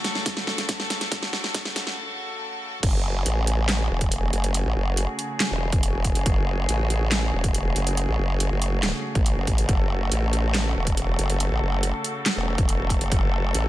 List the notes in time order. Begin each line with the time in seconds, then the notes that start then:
Already playing: C#3 A3 F#4 A4
0.04 snare, closed hi-hat
0.15 snare
0.26 kick, snare, closed hi-hat
0.37 snare
0.47 snare
0.58 snare, closed hi-hat
0.69 kick, snare, closed hi-hat
0.80 snare
0.90 snare, closed hi-hat
1.01 snare, closed hi-hat
1.12 kick, snare, closed hi-hat
1.23 snare
1.33 snare
1.44 snare
1.54 kick, snare, closed hi-hat
1.65 snare
1.76 snare, closed hi-hat
1.87 snare
2.83 F#1 C#3 A3 F#4 G#4, kick, closed hi-hat, crash
3.26 A1, closed hi-hat
3.47 closed hi-hat
3.69 snare, clap, closed hi-hat
3.90 E1
4.01 kick, closed hi-hat
4.12 closed hi-hat
4.33 F#1, closed hi-hat
4.44 closed hi-hat
4.54 closed hi-hat
4.65 A1
4.76 F#1
4.97 closed hi-hat
5.19 closed hi-hat
5.40 snare, clap, closed hi-hat
5.51 E1
5.72 E1, kick, closed hi-hat
5.83 closed hi-hat
6.04 kick, closed hi-hat
6.15 F#1, closed hi-hat
6.26 F#1, kick, closed hi-hat
6.69 A1, closed hi-hat
6.90 closed hi-hat
7.12 snare, clap, closed hi-hat
7.33 E1
7.44 kick, closed hi-hat
7.54 closed hi-hat
7.76 F#1, closed hi-hat
7.87 closed hi-hat
7.97 closed hi-hat
8.08 A1
8.19 F#1
8.40 closed hi-hat
8.51 F#1
8.62 closed hi-hat
8.83 snare, clap, closed hi-hat
9.15 A1, kick, closed hi-hat
9.26 closed hi-hat
9.37 F#1
9.47 A1, kick, closed hi-hat
9.58 closed hi-hat
9.69 F#1 A4, kick, closed hi-hat
10.12 A1, closed hi-hat
10.33 closed hi-hat
10.54 snare, clap, closed hi-hat
10.76 E1
10.87 kick, closed hi-hat
10.97 closed hi-hat
11.19 F#1, closed hi-hat
11.30 closed hi-hat
11.40 closed hi-hat
11.51 A1
11.62 F#1
11.83 closed hi-hat
12.04 closed hi-hat
12.26 snare, clap, closed hi-hat
12.37 E1
12.58 E1, kick, closed hi-hat
12.69 closed hi-hat
12.90 kick, closed hi-hat
13.01 F#1, closed hi-hat
13.12 F#1, kick, closed hi-hat
13.54 A1, closed hi-hat